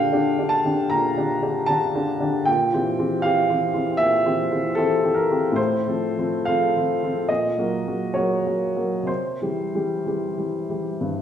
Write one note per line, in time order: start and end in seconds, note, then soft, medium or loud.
0.00 0.91 A#2 medium
0.00 0.12 D3 soft
0.00 0.13 D4 soft
0.00 0.13 G4 soft
0.00 0.52 F5 medium
0.00 2.45 G5 medium
0.12 0.37 D3 soft
0.12 0.37 D4 soft
0.12 0.37 G4 soft
0.39 0.63 D3 soft
0.39 0.63 D4 soft
0.39 0.63 G4 soft
0.49 0.90 A5 medium
0.65 0.89 D3 soft
0.65 0.89 D4 soft
0.65 0.89 G4 soft
0.90 1.17 A#2 soft
0.90 1.68 A#5 medium
1.17 1.41 D3 soft
1.17 1.41 D4 soft
1.17 1.41 G4 soft
1.42 1.66 D3 soft
1.42 1.66 D4 soft
1.42 1.67 G4 soft
1.66 1.92 D3 soft
1.66 1.92 D4 soft
1.66 1.93 G4 soft
1.66 2.46 A5 medium
1.95 2.19 D3 soft
1.95 2.19 D4 soft
1.95 2.19 G4 soft
2.20 2.44 D3 soft
2.20 2.44 D4 soft
2.20 2.45 G4 soft
2.45 2.72 A#2 medium
2.45 3.22 G5 medium
2.73 2.96 E3 soft
2.73 2.96 C4 soft
2.73 2.97 G4 soft
2.99 3.21 E3 soft
2.99 3.21 C4 soft
2.99 3.22 G4 soft
3.22 3.46 E3 soft
3.22 3.47 C4 soft
3.22 3.47 G4 soft
3.22 3.99 F5 medium
3.50 3.72 E3 soft
3.50 3.72 C4 soft
3.50 3.72 G4 soft
3.74 3.97 E3 soft
3.74 3.97 C4 soft
3.74 3.97 G4 soft
3.97 4.24 A#2 soft
3.97 4.76 E5 medium
4.25 4.48 E3 soft
4.25 4.49 C4 soft
4.25 4.49 G4 soft
4.51 4.74 E3 soft
4.51 4.75 C4 soft
4.51 4.75 G4 soft
4.75 5.01 E3 soft
4.75 5.01 C4 soft
4.75 5.01 G4 soft
4.75 5.16 A4 medium
5.03 5.27 E3 soft
5.03 5.27 C4 soft
5.03 5.28 G4 soft
5.14 5.56 A#4 medium
5.30 5.55 E3 soft
5.30 5.55 C4 soft
5.30 5.55 G4 soft
5.52 5.82 A2 soft
5.52 6.45 C5 medium
5.87 6.14 F3 soft
5.87 6.14 C4 soft
5.87 6.15 A4 soft
6.18 6.44 F3 soft
6.18 6.44 C4 soft
6.18 6.44 A4 soft
6.45 6.72 F3 soft
6.45 6.73 C4 soft
6.45 6.73 A4 soft
6.45 7.29 F5 medium
6.77 7.00 F3 soft
6.77 7.00 C4 soft
6.77 7.01 A4 soft
7.03 7.27 F3 soft
7.03 7.27 C4 soft
7.03 7.28 A4 soft
7.29 7.57 A#2 soft
7.29 8.14 D#5 medium
7.58 7.83 F#3 soft
7.58 7.83 A#3 soft
7.58 7.83 F#4 soft
7.87 8.12 F#3 soft
7.87 8.13 A#3 soft
7.87 8.13 F#4 soft
8.14 8.42 F#3 soft
8.14 8.42 A#3 soft
8.14 8.42 F#4 soft
8.14 9.08 C#5 medium
8.46 8.73 F#3 soft
8.46 8.73 A#3 soft
8.46 8.74 F#4 soft
8.76 9.05 F#3 soft
8.76 9.06 A#3 soft
8.76 9.06 F#4 soft
9.03 9.37 C3 soft
9.07 11.22 C5 medium
9.41 9.70 E3 soft
9.41 9.71 G3 soft
9.41 9.71 G4 soft
9.75 10.03 E3 soft
9.75 10.03 G3 soft
9.75 10.03 G4 soft
10.06 10.34 E3 soft
10.06 10.35 G3 soft
10.06 10.35 G4 soft
10.37 10.65 E3 soft
10.37 10.66 G3 soft
10.37 10.66 G4 soft
10.69 10.97 E3 soft
10.69 10.97 G3 soft
10.69 10.98 G4 soft
11.01 11.22 G2 soft